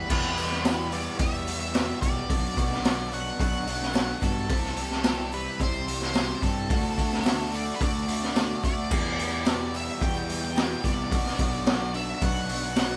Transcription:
Already playing: B4
0.08 E2 B2 E3 G3 B3 E4 G4 E5, kick, crash
0.24 snare, tambourine
0.35 E2 B2 E3 G3 B3 G4, open hi-hat, tambourine
0.51 snare
0.63 E2 B2 E3 G3 B3 G4, snare, open hi-hat, tambourine
0.91 E2 B2 E3 G3 B3 G4 D5, open hi-hat, tambourine
1.19 E2 B2 E3 G3 B3 G4 E5, kick, open hi-hat
1.34 tambourine
1.47 E2 B2 E3 G3 B3 G4, open hi-hat
1.60 E5
1.74 E2 B2 E3 G3 B3 G4, snare, open hi-hat, tambourine
2.01 B1 E2 B2 E3 G3 B3 G4 D5, kick, open hi-hat, tambourine
2.29 B1 B2 F#3 B3 D4 F#4 D5, kick, open hi-hat
2.44 tambourine
2.55 B1 B2 F#3 B3 D4 F#4, kick, open hi-hat, tambourine
2.72 snare
2.83 B2 F#3 B3 D4 F#4, snare, open hi-hat, tambourine
3.11 B2 F#3 B3 D4 F#4 F#5, open hi-hat, tambourine
3.38 B1 B2 F#3 B3 D4 F#4 F#5, kick, open hi-hat, tambourine
3.53 tambourine
3.66 B2 F#3 B3 D4 F#4, open hi-hat
3.82 snare
3.93 B2 F#3 B3 D4 F#4, snare, open hi-hat, tambourine
4.21 G2 B2 F#3 B3 D4 F#4 A4, kick, open hi-hat, tambourine
4.48 C2 C3 E3 G3 C4 E4 G4 E5, kick, open hi-hat
4.63 snare, tambourine
4.76 C3 E3 G3 C4 G4, open hi-hat, tambourine
4.90 snare
5.04 C3 E3 G3 C4 G4, snare, open hi-hat, tambourine
5.32 C3 E3 G3 C4 G4 B4, open hi-hat, tambourine
5.59 C2 C3 E3 G3 C4 G4 C5, kick, open hi-hat, tambourine
5.73 tambourine
5.86 C3 E3 G3 C4 G4, open hi-hat
6.01 C5, snare
6.14 C3 E3 G3 C4 G4, snare, open hi-hat, tambourine
6.41 G2 C3 E3 G3 C4 G4 A4, kick, open hi-hat, tambourine
6.69 D2 D3 A3 D4 F#4 D5, kick, open hi-hat, tambourine
6.83 tambourine
6.96 D2 D3 A3 D4 F#4, kick, open hi-hat, tambourine
7.10 snare, tambourine
7.24 D3 A3 D4 F#4, snare, open hi-hat, tambourine
7.51 D3 A3 D4 F#4 D5, open hi-hat, tambourine
7.67 tambourine
7.74 B4
7.80 D2 D3 A3 D4 F#4 D5, kick, open hi-hat
7.94 tambourine
8.07 D3 A3 D4 F#4, open hi-hat
8.22 snare, tambourine
8.35 D3 A3 D4 F#4, snare, open hi-hat, tambourine
8.63 D2 D3 A3 D4 F#4 D5, kick, open hi-hat, tambourine
8.89 E2 B2 E3 G3 B3 E4 G4 E5, kick, crash
9.05 tambourine
9.18 E2 B2 E3 G3 B3 G4, open hi-hat, tambourine
9.45 E2 B2 E3 G3 B3 G4, snare, open hi-hat, tambourine
9.72 E2 B2 E3 G3 B3 G4 E5, open hi-hat, tambourine
9.99 E2 B2 E3 G3 B3 G4 G5, kick, open hi-hat, tambourine
10.14 tambourine
10.26 E2 B2 E3 G3 B3 G4, open hi-hat
10.45 G5
10.55 E2 B2 E3 G3 B3 G4, snare, open hi-hat, tambourine
10.82 C2 E2 B2 E3 G3 B3 G4 D5, kick, open hi-hat, tambourine
11.09 B1 B2 F#3 B3 D4 F#4, kick, open hi-hat
11.13 B3 D4 D5
11.25 snare, tambourine
11.38 B1 B2 F#3 B3 D4 F#4, kick, open hi-hat, tambourine
11.65 B2 F#3 B3 D4 F#4, snare, open hi-hat, tambourine
11.93 B2 F#3 B3 D4 F#4 E5, open hi-hat, tambourine
12.15 E5
12.21 B1 B2 F#3 B3 D4 F#4 F#5, kick, open hi-hat
12.36 tambourine
12.48 B2 F#3 B3 D4 F#4, open hi-hat
12.66 F#5
12.76 B2 F#3 B3 D4 F#4, snare, open hi-hat, tambourine
12.92 tambourine

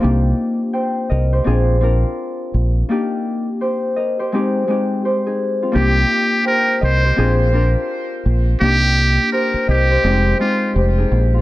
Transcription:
Already playing: C4 F4 A#4 C5
0.00 C2 A#3 D4 D#4 G4
0.73 C5 G5
1.10 C2 A#4 D#5
1.33 G4 C5
1.44 A#1 C4 D4 F4 G#4
1.81 C4 D4 F4 A#4
2.54 A#1
2.89 A#3 D4 D#4 G4
3.61 G4 C5
3.96 A#4 D#5
4.19 G4 C5
4.32 G#3 C4 D#4 G4
4.68 G#3 C4 D#4 G4
5.05 G4 C5
5.26 D#4 G#4
5.62 C4 F4
5.72 C2 A#3 D4 D#4 G4
6.45 A#4 C5 G5
6.81 C2 A#4 C5 D#5
7.04 G4 C5
7.16 A#1 C4 D4 F4 G#4
7.52 C4 D4 F4 A#4
8.26 A#1
8.60 C2 A#3 D4 D#4 G4
9.32 G4 A#4 C5
9.54 muted fingered electric bass stroke
9.68 C2 G4 A#4 D#5
9.91 G4 C5
10.04 F1 G#3 C4 D#4 G4
10.39 G#3 C4 D#4 F4 G4
10.76 F1 G4 C5
10.98 D#4 G#4
11.12 A#1
11.34 C4 F4

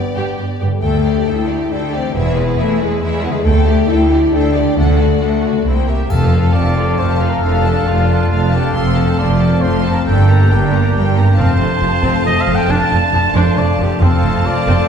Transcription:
Already playing: G2 G3 B3 D4 G4 D5
0.16 G2 G4
0.38 G2 G4
0.60 G2 B3 G4
0.65 D3 G3
0.69 A3
0.74 D4
0.78 A3 G4 G5
0.83 D2 A4
1.04 G4 D5
1.26 D2 E4 A4 G5
1.49 G4 D5
1.70 D2 D4 A4 G5
1.93 C4 G4 D5
1.98 E3
2.02 G#3
2.06 B3
2.11 E1 E2 B3 E4 G#4
2.15 G#4 E5
2.37 E4 G#4 B4
2.57 E2 A3 E4 G#4 E5
2.80 G#3 E4 G#4 B4
3.01 E2 E4 G#4 E5
3.22 B3 E4 G#4 B4
3.28 D3 G#3
3.33 A3
3.37 D4
3.41 A3 G4 A4
3.45 D2 A4 G5
3.67 G4 D5
3.87 D2 E4 A4 G5
4.11 G4 D5
4.33 D2 D4 A4 G5
4.55 G4 D5
4.59 D3
4.64 A3
4.68 D4
4.73 D2 A3 D4 F#4
4.77 D2 D3 A4 F#5
4.98 F#4 D5
5.20 D2 A3 D4 A4 F#5
5.42 F#4
5.47 C3 D5
5.54 C4
5.58 E4
5.62 C2 A#3 E4 G4
5.67 C5 G5
5.87 G4 A#4 E5
6.09 F1 F2 A3 C4 F4 A4 F5 A5, triangle
6.32 C4 F4 A4 F5
6.53 F1 F2 F4 A4 D5 A5
6.76 F4 A4 F5
6.97 F1 F2 F4 A4 C5 A5
7.19 F4 A4 F5
7.30 A#4
7.42 F1 F2 A3 D4 F4 A4 F5
7.65 D4 A4 A5
7.87 F1 F2 A3 F4 F5
8.08 D4 A4 A5
8.30 F1 F2 A3 F4 D5 F5
8.52 D4 G4 A4 A5
8.74 F1 F2 A3 C4 F4 A4 F5 A5 C6
8.95 C4 A4 A5
9.18 F1 F2 A3 F4 D5 C6
9.40 C4 A4 A5
9.62 F1 F2 A3 F4 C5 C6
9.85 C4 A4 A5
9.92 A#4
10.06 G1 G2 G3 A#3 D4 A4 G5 A#5
10.29 A#3 G4 A#5
10.50 G1 G2 G3 D4 G4 G5
10.73 A#3 G4 A#4 A#5
10.95 G1 G2 G3 D4 G5
11.16 A#3 G4 A#4 A#5
11.37 F1 F2 A3 C4 F4 C5 F5 A5
11.59 F1 F2 A3 C4
11.81 F1 F2 F3 F4
12.02 F1 F2 C4
12.26 F1 F2 A3 C5 D#5
12.41 F5
12.47 F1 F2 F3 A4
12.55 G5
12.69 F1 F2 D4 F5 A5
12.91 F1 F2 A3 D4
13.13 F1 F2 F3 F4
13.34 F1 F2 D4 A4 C5
13.56 F1 F2 A3 D5
13.79 F1 F2 F3 G4
13.99 F1 F2 C4 F4 A4 F5 A5 C6
14.03 A3 C4
14.22 F1 F2 A3 C4
14.45 F1 F2 F3 F4 D5
14.67 F1 F2 C4 A4

